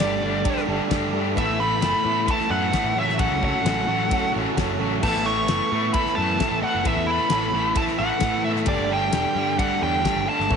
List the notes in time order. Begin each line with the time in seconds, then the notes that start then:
Already playing: A3 D4 G4 A4 D5
0.00 G1 G2 D3 G3 A3 D4 G4 A4 D5, snare, ride bell
0.21 G1 G2 D3 G3 A3 D4 G4 A4 D5
0.44 G2 D3 G3 A3 D4 G4 A4 D5, kick, ride bell
0.57 snare
0.66 G1 G2 D3 G3 A3 D4 G4 A4 D5
0.88 G2 D3 G3 D4 G4 A4 D5, kick, snare, ride bell
0.92 A3 D4 G4
1.11 G2 D3 G3 A3 D4 G4 A4 D5
1.15 G4
1.33 A2 E3 A3 B3 E4 A4 B4 E5, kick
1.37 A1 B3 A4 E5, ride bell
1.48 A1
1.58 A2 E3 A3 B3 E4 A4 B4 E5 B5
1.80 F#1 A2 E3 A3 B3 E4 A4 B4 F#5, snare, ride bell
1.84 A4
2.02 A2 E3 A3 E4 A4 B4 E5
2.06 B3 A4
2.24 A2 E4 A4 B4 E5
2.28 E3 A3 B3 A4 A5, kick, ride bell
2.40 snare
2.48 F#2 A2 E3 A3 E4 A4 B4 E5 F#5
2.52 B3 A4
2.71 A2 E3 A3 B3 E4 A4 B4 E5, kick, snare, ride bell
2.84 A1
2.95 A1 F#2 A2 C#3 F#3 A3 C#4 F#4 A4 C#5 E5 F#5
3.09 snare
3.17 F#2 A2 C#3 F#3 A3 C#4 A4 F#5, kick, ride bell
3.31 C#2
3.40 F#2 A2 C#3 F#3 A3 C#4 F#4 A4 C#5, kick
3.44 F#5
3.62 A1 F#2 A2 C#3 F#3 A3 C#4 F#4 A4 C#5 F#5, ride bell
3.66 snare
3.86 A1 F#2 A2 C#3 F#3 A3 C#4 F#4 A4 C#5 F#5
4.09 F#2 A2 C#3 F#3 A3 C#4 F#4 A4 C#5, kick, ride bell
4.13 F#5
4.33 A1 F#2 A2 C#3 F#3 A3 C#4 F#4 A4 C#5 F#5
4.56 F#1 F#2 A2 C#3 F#3 A3 C#4 F#4 A4 C#5 F#5, kick, snare, ride bell
4.79 A1 F#2 A2 C#3 F#3 A3 C#4 F#4 A4 C#5 F#5
5.00 A1 A2 E3 A3 B3 E4 A4 B4 E5 A5, kick, crash
5.16 A1
5.23 A2 E3 A3 B3 E4 A4 B4 C#5 C#6
5.27 A4
5.47 F#1 A2 E3 A3 B3 E4 A4 B4 E5, snare, ride bell
5.71 A2 E3 A3 B3 E4 A4 B4 E5
5.93 A2 E3 A3 B3 E4 A4 B4 E5 B5, kick, ride bell
6.06 snare
6.15 F#2 A2 E3 A3 B3 E4 A4 B4 C#5 A5
6.39 A2 E3 A3 B3 E4 A4 B4 E5, kick, snare, ride bell
6.51 A1
6.61 A2 E3 A3 B3 E4 A4 B4 F#5
6.65 F#5
6.75 F#1
6.84 A1 A2 E3 A3 B3 E4 A4 B4 E5, kick, ride bell
6.96 E2
7.06 A2 E3 A3 B3 E4 A4 B4 E5 B5
7.29 A1 A2 E3 A3 B3 E4 A4 B4, snare, ride bell
7.33 C#5
7.51 A1 A2 E3 A3 B3 E4 A4 B4 E5
7.74 A2 E3 A3 B3 E4 A4 B4 E5 A5, kick, ride bell
7.87 snare
7.97 A1 A2 E3 A3 B3 E4 A4 B4 F#5
8.20 A2 E3 A3 B3 E4 A4 B4 E5, kick, snare, ride bell
8.43 A2 E3 A3 B3 E4 A4 B4 E5
8.56 snare
8.65 G1 G2 G3 A3 D4 G4 A4 D5, kick, ride bell
8.69 D3 G3
8.79 G1
8.88 G2 D3 G3 A3 D4 G4 A4 E5 G5
9.11 E1 G2 D3 G3 A3 D4 G4 A4 D5, snare, ride bell
9.33 G2 G3 A3 D4 G4 A4 D5
9.37 G2 D3 G3
9.55 G2 G3 A3 D4 G4 A4 D5 F#5, kick, ride bell
9.60 D3 G3
9.78 G2 D3 G3 A3 D4 G4 A4
9.82 E2 G3 C#5 G5
10.01 G2 D3 G3 A3 D4 G4 A4
10.05 G3 D5, kick, snare, ride bell
10.16 G1
10.25 G2 D3 G3 A3 D4 G4 A4 D5
10.29 A5
10.40 G1, snare
10.48 A1 A2 E3 A3 C#4 E4 A4 B4 C#5, kick, high tom
10.52 B3 C#4 E4 A4